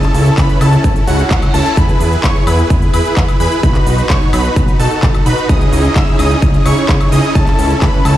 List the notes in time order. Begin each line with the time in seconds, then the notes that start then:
Already playing: C#4 E4 A4 A5
0.03 clap, closed hi-hat, shaker
0.14 C#2, open hi-hat, shaker
0.26 closed hi-hat, shaker
0.38 C#2 C#4 E4 B4 B5, kick, clap, closed hi-hat, shaker
0.49 closed hi-hat, shaker
0.61 C#2 C#4 E4 A4 A5, open hi-hat, high woodblock, shaker
0.73 closed hi-hat, shaker
0.84 G#1, kick, closed hi-hat, reverse cymbal, shaker
0.96 closed hi-hat, shaker
1.07 C#2 C#4 E4 F#4 F#5, open hi-hat, shaker
1.19 closed hi-hat, shaker
1.31 C#2, kick, clap, closed hi-hat, shaker
1.42 closed hi-hat, high woodblock, shaker
1.54 C#2 C#4 E4 A4 A5, open hi-hat, shaker
1.66 closed hi-hat, shaker
1.77 E2 G#4 B4 B5, kick, closed hi-hat, shaker
1.89 closed hi-hat, shaker
2.00 E2, open hi-hat, shaker
2.12 closed hi-hat, shaker
2.24 E2 E4 G#4 C#5 C#6, kick, clap, closed hi-hat, shaker
2.36 shaker
2.47 E2 E4 G#4 B4 B5, open hi-hat, high woodblock, shaker
2.59 closed hi-hat, shaker
2.70 E2, kick, closed hi-hat, shaker
2.82 closed hi-hat, shaker
2.93 E2 E4 G#4 B4 B5, open hi-hat, high woodblock, shaker
3.05 closed hi-hat, shaker
3.17 E2, kick, clap, closed hi-hat, shaker
3.28 closed hi-hat, high woodblock, shaker
3.40 E2 E4 G#4 B4 B5, open hi-hat, shaker
3.52 closed hi-hat, shaker
3.63 B1 D#4 F#4 B4 B5, kick, closed hi-hat, shaker
3.75 clap, closed hi-hat, shaker
3.86 B1, open hi-hat, shaker
3.98 closed hi-hat, shaker
4.10 B1 D#4 F#4 C#5 C#6, kick, clap, closed hi-hat, shaker
4.22 shaker
4.33 B1 D#4 F#4 B4 B5, open hi-hat, high woodblock, shaker
4.45 closed hi-hat, shaker
4.56 B1, kick, closed hi-hat, shaker
4.68 closed hi-hat, shaker
4.80 B1 D#4 F#4 A4 A5, open hi-hat, shaker
4.91 closed hi-hat, shaker
5.03 B1, kick, clap, closed hi-hat, shaker
5.14 closed hi-hat, high woodblock, shaker
5.26 B1 D#4 F#4 B4 B5, open hi-hat, shaker
5.38 closed hi-hat, shaker
5.49 C#2 C#4 D#4 E4 G#4 D#5 D#6, kick, closed hi-hat, shaker
5.61 closed hi-hat, shaker
5.73 C#2, open hi-hat, shaker
5.84 closed hi-hat, shaker
5.96 C#2 C#4 D#4 E4 G#4 E5 E6, kick, clap, closed hi-hat, shaker
6.08 shaker
6.19 C#2 C#4 D#4 E4 G#4 D#5 D#6, open hi-hat, high woodblock, shaker
6.31 closed hi-hat, shaker
6.42 C#2, kick, closed hi-hat, shaker
6.54 closed hi-hat, shaker
6.66 C#2 C#4 D#4 E4 G#4 C#5 C#6, open hi-hat, high woodblock, shaker
6.77 closed hi-hat, shaker
6.89 C#2, kick, clap, closed hi-hat, shaker
7.01 closed hi-hat, high woodblock, shaker
7.12 C#2 C#4 D#4 E4 G#4 D#5 D#6, open hi-hat, shaker
7.24 closed hi-hat, shaker
7.35 C#2 C#4 E4 A4 A5, kick, closed hi-hat, shaker
7.47 clap, closed hi-hat, shaker
7.59 C#2, open hi-hat, shaker
7.70 closed hi-hat, shaker
7.82 C#2 C#4 E4 B4 B5, kick, clap, closed hi-hat, shaker
7.94 shaker
8.05 C#2 C#4 E4 A4 A5, open hi-hat, high woodblock, shaker